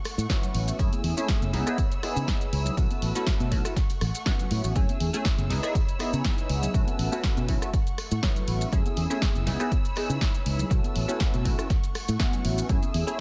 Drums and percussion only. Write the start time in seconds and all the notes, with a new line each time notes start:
0.05 cross-stick, open hi-hat, tambourine
0.18 tambourine, shaker
0.29 kick, snare, closed hi-hat, tambourine, shaker
0.42 closed hi-hat, low conga, shaker
0.54 open hi-hat, tambourine
0.67 closed hi-hat, tambourine, shaker
0.79 kick, closed hi-hat, tambourine, shaker
0.92 closed hi-hat, high conga, shaker
1.04 open hi-hat, tambourine
1.17 tambourine, high conga, shaker
1.28 kick, snare, closed hi-hat, tambourine, shaker
1.42 closed hi-hat, high conga, shaker
1.53 snare, open hi-hat, tambourine
1.67 cross-stick, closed hi-hat, tambourine, shaker
1.78 kick, closed hi-hat, tambourine, shaker
1.92 closed hi-hat, shaker
2.03 cross-stick, open hi-hat, tambourine
2.17 shaker
2.27 kick, snare, closed hi-hat, tambourine, shaker
2.41 closed hi-hat, shaker
2.53 open hi-hat, tambourine
2.65 closed hi-hat, tambourine, low conga, shaker
2.77 kick, closed hi-hat, tambourine, shaker
2.90 closed hi-hat, tambourine, high conga, shaker
3.02 open hi-hat, tambourine
3.15 closed hi-hat, tambourine, high conga, shaker
3.27 kick, snare, closed hi-hat, tambourine, shaker
3.40 closed hi-hat, high conga, shaker
3.52 kick, open hi-hat, tambourine
3.65 cross-stick, closed hi-hat, tambourine, shaker
3.76 kick, snare, closed hi-hat, tambourine, shaker
3.90 closed hi-hat, tambourine, shaker
4.01 cross-stick, open hi-hat, tambourine
4.15 closed hi-hat, tambourine, shaker
4.26 kick, snare, closed hi-hat, tambourine, shaker
4.39 closed hi-hat, tambourine, low conga, shaker
4.51 open hi-hat, tambourine
4.64 closed hi-hat, tambourine, shaker
4.76 kick, closed hi-hat, tambourine, shaker
4.89 closed hi-hat, high conga, shaker
5.00 open hi-hat, tambourine
5.14 tambourine, high conga, shaker
5.25 kick, snare, closed hi-hat, tambourine, shaker
5.38 closed hi-hat, high conga, shaker
5.50 snare, open hi-hat, tambourine
5.63 cross-stick, closed hi-hat, tambourine, shaker
5.75 kick, closed hi-hat, tambourine, shaker
5.89 closed hi-hat, shaker
5.99 cross-stick, open hi-hat, tambourine
6.13 tambourine, shaker
6.24 kick, snare, closed hi-hat, tambourine, shaker
6.38 closed hi-hat, shaker
6.49 open hi-hat, tambourine
6.63 closed hi-hat, tambourine, low conga, shaker
6.74 kick, closed hi-hat, tambourine, shaker
6.87 closed hi-hat, high conga, shaker
6.99 open hi-hat, tambourine
7.12 tambourine, high conga, shaker
7.24 kick, snare, closed hi-hat, tambourine, shaker
7.36 closed hi-hat, high conga, shaker
7.48 kick, open hi-hat, tambourine
7.61 cross-stick, closed hi-hat, tambourine, shaker
7.73 kick, closed hi-hat, tambourine, shaker
7.87 closed hi-hat, shaker
7.98 cross-stick, open hi-hat, tambourine
8.11 tambourine, shaker
8.23 kick, snare, closed hi-hat, tambourine, shaker
8.36 closed hi-hat, low conga, shaker
8.47 open hi-hat, tambourine
8.61 closed hi-hat, tambourine, shaker
8.72 kick, closed hi-hat, tambourine, shaker
8.86 closed hi-hat, high conga, shaker
8.96 open hi-hat, tambourine
9.10 tambourine, high conga, shaker
9.22 kick, snare, closed hi-hat, tambourine, shaker
9.35 closed hi-hat, high conga, shaker
9.47 snare, open hi-hat, tambourine
9.59 cross-stick, closed hi-hat, tambourine, shaker
9.71 kick, closed hi-hat, tambourine, shaker
9.85 closed hi-hat, shaker
9.96 cross-stick, open hi-hat, tambourine
10.10 shaker
10.21 kick, snare, closed hi-hat, tambourine, shaker
10.34 closed hi-hat, shaker
10.46 open hi-hat, tambourine
10.59 closed hi-hat, tambourine, low conga, shaker
10.71 kick, closed hi-hat, tambourine, shaker
10.84 closed hi-hat, high conga, shaker
10.96 open hi-hat, tambourine
11.08 tambourine, high conga, shaker
11.20 kick, snare, closed hi-hat, tambourine, shaker
11.34 closed hi-hat, tambourine, high conga, shaker
11.45 kick, open hi-hat, tambourine
11.59 cross-stick, closed hi-hat, tambourine, shaker
11.70 kick, snare, closed hi-hat, tambourine, shaker
11.84 closed hi-hat, shaker
11.95 cross-stick, open hi-hat, tambourine
12.08 closed hi-hat, tambourine, shaker
12.20 kick, snare, closed hi-hat, tambourine, shaker
12.33 closed hi-hat, low conga, shaker
12.45 open hi-hat, tambourine
12.57 closed hi-hat, tambourine, shaker
12.69 kick, closed hi-hat, tambourine, shaker
12.83 closed hi-hat, high conga, shaker
12.94 open hi-hat, tambourine
13.08 tambourine, high conga, shaker